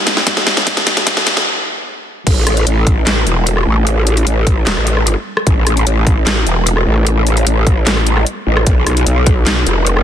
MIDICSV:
0, 0, Header, 1, 3, 480
1, 0, Start_track
1, 0, Tempo, 400000
1, 800, Time_signature, 4, 2, 24, 8
1, 12037, End_track
2, 0, Start_track
2, 0, Title_t, "Wobble bass"
2, 0, Program_c, 0, 39
2, 2720, Note_on_c, 0, 33, 102
2, 2941, Note_off_c, 0, 33, 0
2, 2960, Note_on_c, 0, 33, 98
2, 3181, Note_off_c, 0, 33, 0
2, 3200, Note_on_c, 0, 33, 100
2, 3661, Note_off_c, 0, 33, 0
2, 3680, Note_on_c, 0, 33, 103
2, 3901, Note_off_c, 0, 33, 0
2, 3921, Note_on_c, 0, 28, 96
2, 4382, Note_off_c, 0, 28, 0
2, 4400, Note_on_c, 0, 33, 100
2, 5101, Note_off_c, 0, 33, 0
2, 5120, Note_on_c, 0, 33, 98
2, 5581, Note_off_c, 0, 33, 0
2, 5600, Note_on_c, 0, 28, 101
2, 5703, Note_off_c, 0, 28, 0
2, 5723, Note_on_c, 0, 33, 99
2, 6183, Note_off_c, 0, 33, 0
2, 6560, Note_on_c, 0, 33, 102
2, 6781, Note_off_c, 0, 33, 0
2, 6800, Note_on_c, 0, 33, 98
2, 7021, Note_off_c, 0, 33, 0
2, 7039, Note_on_c, 0, 33, 98
2, 7501, Note_off_c, 0, 33, 0
2, 7520, Note_on_c, 0, 33, 96
2, 7741, Note_off_c, 0, 33, 0
2, 7760, Note_on_c, 0, 28, 91
2, 8221, Note_off_c, 0, 28, 0
2, 8239, Note_on_c, 0, 33, 97
2, 8941, Note_off_c, 0, 33, 0
2, 8959, Note_on_c, 0, 33, 100
2, 9421, Note_off_c, 0, 33, 0
2, 9439, Note_on_c, 0, 33, 98
2, 9901, Note_off_c, 0, 33, 0
2, 10159, Note_on_c, 0, 33, 98
2, 10381, Note_off_c, 0, 33, 0
2, 10399, Note_on_c, 0, 35, 103
2, 10621, Note_off_c, 0, 35, 0
2, 10639, Note_on_c, 0, 35, 97
2, 10861, Note_off_c, 0, 35, 0
2, 10878, Note_on_c, 0, 35, 98
2, 11340, Note_off_c, 0, 35, 0
2, 11359, Note_on_c, 0, 35, 97
2, 11581, Note_off_c, 0, 35, 0
2, 11598, Note_on_c, 0, 29, 94
2, 12037, Note_off_c, 0, 29, 0
2, 12037, End_track
3, 0, Start_track
3, 0, Title_t, "Drums"
3, 81, Note_on_c, 9, 38, 98
3, 81, Note_on_c, 9, 42, 54
3, 201, Note_off_c, 9, 38, 0
3, 201, Note_off_c, 9, 42, 0
3, 203, Note_on_c, 9, 38, 84
3, 320, Note_off_c, 9, 38, 0
3, 320, Note_on_c, 9, 36, 101
3, 320, Note_on_c, 9, 38, 99
3, 320, Note_on_c, 9, 42, 79
3, 440, Note_off_c, 9, 36, 0
3, 440, Note_off_c, 9, 38, 0
3, 440, Note_off_c, 9, 42, 0
3, 443, Note_on_c, 9, 38, 89
3, 560, Note_off_c, 9, 38, 0
3, 560, Note_on_c, 9, 38, 102
3, 680, Note_off_c, 9, 38, 0
3, 684, Note_on_c, 9, 38, 93
3, 800, Note_on_c, 9, 36, 100
3, 801, Note_off_c, 9, 38, 0
3, 801, Note_on_c, 9, 38, 103
3, 801, Note_on_c, 9, 42, 86
3, 920, Note_off_c, 9, 36, 0
3, 921, Note_off_c, 9, 38, 0
3, 921, Note_off_c, 9, 42, 0
3, 924, Note_on_c, 9, 38, 92
3, 924, Note_on_c, 9, 42, 37
3, 1040, Note_off_c, 9, 38, 0
3, 1040, Note_off_c, 9, 42, 0
3, 1040, Note_on_c, 9, 38, 110
3, 1040, Note_on_c, 9, 42, 60
3, 1160, Note_off_c, 9, 38, 0
3, 1160, Note_off_c, 9, 42, 0
3, 1163, Note_on_c, 9, 38, 95
3, 1163, Note_on_c, 9, 42, 40
3, 1280, Note_off_c, 9, 38, 0
3, 1280, Note_off_c, 9, 42, 0
3, 1280, Note_on_c, 9, 36, 99
3, 1280, Note_on_c, 9, 38, 107
3, 1280, Note_on_c, 9, 42, 84
3, 1400, Note_off_c, 9, 36, 0
3, 1400, Note_off_c, 9, 38, 0
3, 1400, Note_off_c, 9, 42, 0
3, 1403, Note_on_c, 9, 38, 96
3, 1520, Note_off_c, 9, 38, 0
3, 1520, Note_on_c, 9, 38, 104
3, 1520, Note_on_c, 9, 42, 57
3, 1640, Note_off_c, 9, 38, 0
3, 1640, Note_off_c, 9, 42, 0
3, 1642, Note_on_c, 9, 38, 93
3, 1762, Note_off_c, 9, 38, 0
3, 2720, Note_on_c, 9, 36, 117
3, 2720, Note_on_c, 9, 42, 86
3, 2720, Note_on_c, 9, 49, 103
3, 2840, Note_off_c, 9, 36, 0
3, 2840, Note_off_c, 9, 42, 0
3, 2840, Note_off_c, 9, 49, 0
3, 2961, Note_on_c, 9, 37, 66
3, 2961, Note_on_c, 9, 42, 56
3, 3081, Note_off_c, 9, 37, 0
3, 3081, Note_off_c, 9, 42, 0
3, 3084, Note_on_c, 9, 42, 40
3, 3201, Note_off_c, 9, 42, 0
3, 3201, Note_on_c, 9, 42, 86
3, 3321, Note_off_c, 9, 42, 0
3, 3440, Note_on_c, 9, 36, 112
3, 3440, Note_on_c, 9, 42, 58
3, 3560, Note_off_c, 9, 36, 0
3, 3560, Note_off_c, 9, 42, 0
3, 3681, Note_on_c, 9, 38, 119
3, 3681, Note_on_c, 9, 39, 89
3, 3681, Note_on_c, 9, 42, 85
3, 3801, Note_off_c, 9, 38, 0
3, 3801, Note_off_c, 9, 39, 0
3, 3801, Note_off_c, 9, 42, 0
3, 3920, Note_on_c, 9, 42, 56
3, 4040, Note_off_c, 9, 42, 0
3, 4160, Note_on_c, 9, 42, 82
3, 4280, Note_off_c, 9, 42, 0
3, 4283, Note_on_c, 9, 37, 53
3, 4403, Note_off_c, 9, 37, 0
3, 4641, Note_on_c, 9, 42, 82
3, 4761, Note_off_c, 9, 42, 0
3, 4881, Note_on_c, 9, 42, 56
3, 5001, Note_off_c, 9, 42, 0
3, 5004, Note_on_c, 9, 42, 38
3, 5121, Note_off_c, 9, 42, 0
3, 5121, Note_on_c, 9, 42, 84
3, 5241, Note_off_c, 9, 42, 0
3, 5360, Note_on_c, 9, 36, 110
3, 5361, Note_on_c, 9, 42, 56
3, 5480, Note_off_c, 9, 36, 0
3, 5481, Note_off_c, 9, 42, 0
3, 5601, Note_on_c, 9, 38, 123
3, 5601, Note_on_c, 9, 39, 92
3, 5601, Note_on_c, 9, 42, 79
3, 5721, Note_off_c, 9, 38, 0
3, 5721, Note_off_c, 9, 39, 0
3, 5721, Note_off_c, 9, 42, 0
3, 5724, Note_on_c, 9, 37, 51
3, 5841, Note_on_c, 9, 42, 54
3, 5844, Note_off_c, 9, 37, 0
3, 5961, Note_off_c, 9, 42, 0
3, 5964, Note_on_c, 9, 37, 61
3, 6081, Note_on_c, 9, 42, 79
3, 6084, Note_off_c, 9, 37, 0
3, 6201, Note_off_c, 9, 42, 0
3, 6444, Note_on_c, 9, 37, 80
3, 6560, Note_on_c, 9, 36, 125
3, 6560, Note_on_c, 9, 42, 76
3, 6564, Note_off_c, 9, 37, 0
3, 6680, Note_off_c, 9, 36, 0
3, 6680, Note_off_c, 9, 42, 0
3, 6800, Note_on_c, 9, 37, 62
3, 6800, Note_on_c, 9, 42, 56
3, 6920, Note_off_c, 9, 37, 0
3, 6920, Note_off_c, 9, 42, 0
3, 6923, Note_on_c, 9, 42, 36
3, 7040, Note_off_c, 9, 42, 0
3, 7040, Note_on_c, 9, 42, 78
3, 7160, Note_off_c, 9, 42, 0
3, 7280, Note_on_c, 9, 36, 110
3, 7280, Note_on_c, 9, 42, 53
3, 7400, Note_off_c, 9, 36, 0
3, 7400, Note_off_c, 9, 42, 0
3, 7520, Note_on_c, 9, 38, 120
3, 7520, Note_on_c, 9, 39, 93
3, 7520, Note_on_c, 9, 42, 75
3, 7640, Note_off_c, 9, 38, 0
3, 7640, Note_off_c, 9, 39, 0
3, 7640, Note_off_c, 9, 42, 0
3, 7760, Note_on_c, 9, 42, 51
3, 7880, Note_off_c, 9, 42, 0
3, 8000, Note_on_c, 9, 42, 79
3, 8120, Note_off_c, 9, 42, 0
3, 8122, Note_on_c, 9, 37, 53
3, 8242, Note_off_c, 9, 37, 0
3, 8479, Note_on_c, 9, 42, 78
3, 8599, Note_off_c, 9, 42, 0
3, 8719, Note_on_c, 9, 42, 53
3, 8839, Note_off_c, 9, 42, 0
3, 8842, Note_on_c, 9, 42, 37
3, 8960, Note_off_c, 9, 42, 0
3, 8960, Note_on_c, 9, 42, 75
3, 9080, Note_off_c, 9, 42, 0
3, 9200, Note_on_c, 9, 36, 111
3, 9200, Note_on_c, 9, 42, 50
3, 9320, Note_off_c, 9, 36, 0
3, 9320, Note_off_c, 9, 42, 0
3, 9439, Note_on_c, 9, 38, 126
3, 9439, Note_on_c, 9, 39, 88
3, 9439, Note_on_c, 9, 42, 73
3, 9559, Note_off_c, 9, 38, 0
3, 9559, Note_off_c, 9, 39, 0
3, 9559, Note_off_c, 9, 42, 0
3, 9562, Note_on_c, 9, 37, 54
3, 9679, Note_on_c, 9, 42, 50
3, 9682, Note_off_c, 9, 37, 0
3, 9799, Note_off_c, 9, 42, 0
3, 9802, Note_on_c, 9, 37, 59
3, 9918, Note_on_c, 9, 42, 76
3, 9922, Note_off_c, 9, 37, 0
3, 10038, Note_off_c, 9, 42, 0
3, 10282, Note_on_c, 9, 37, 79
3, 10399, Note_on_c, 9, 36, 121
3, 10399, Note_on_c, 9, 42, 77
3, 10402, Note_off_c, 9, 37, 0
3, 10519, Note_off_c, 9, 36, 0
3, 10519, Note_off_c, 9, 42, 0
3, 10639, Note_on_c, 9, 37, 64
3, 10639, Note_on_c, 9, 42, 54
3, 10759, Note_off_c, 9, 37, 0
3, 10759, Note_off_c, 9, 42, 0
3, 10762, Note_on_c, 9, 42, 37
3, 10879, Note_off_c, 9, 42, 0
3, 10879, Note_on_c, 9, 42, 77
3, 10999, Note_off_c, 9, 42, 0
3, 11118, Note_on_c, 9, 42, 52
3, 11119, Note_on_c, 9, 36, 105
3, 11238, Note_off_c, 9, 42, 0
3, 11239, Note_off_c, 9, 36, 0
3, 11358, Note_on_c, 9, 38, 117
3, 11358, Note_on_c, 9, 39, 83
3, 11358, Note_on_c, 9, 42, 75
3, 11478, Note_off_c, 9, 38, 0
3, 11478, Note_off_c, 9, 39, 0
3, 11478, Note_off_c, 9, 42, 0
3, 11599, Note_on_c, 9, 42, 51
3, 11719, Note_off_c, 9, 42, 0
3, 11839, Note_on_c, 9, 42, 72
3, 11959, Note_off_c, 9, 42, 0
3, 11962, Note_on_c, 9, 37, 56
3, 12037, Note_off_c, 9, 37, 0
3, 12037, End_track
0, 0, End_of_file